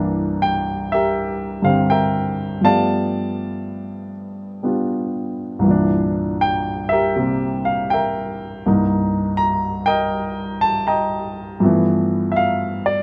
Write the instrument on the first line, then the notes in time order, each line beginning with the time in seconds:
grand piano
Already playing: C2 G2 E3 A#3 D4
0.42 G5
0.92 G4 A#4 E5
1.62 G2 D3 G3 C4 F5
1.90 A#4 E5 G5
2.61 G2 F3 A3 B3 F5 A5
2.66 G4 D5
4.63 G3 B3 D4 F4
5.59 C2 G2
5.64 E3
5.68 A#2 D4
6.41 G5
6.89 A#4 E5
6.93 G4
7.15 C3 G3 A#3 C4 G4
7.65 F5
7.90 A#4 E5 G5
8.66 C2 G2 A#3 D#4
9.37 A#5
9.86 A#4 D#5 G5
10.61 A5
10.87 D#5 G5 A#5
11.60 G2 F3 A3
11.64 E3 B3
12.32 E5
12.36 F5
12.86 D5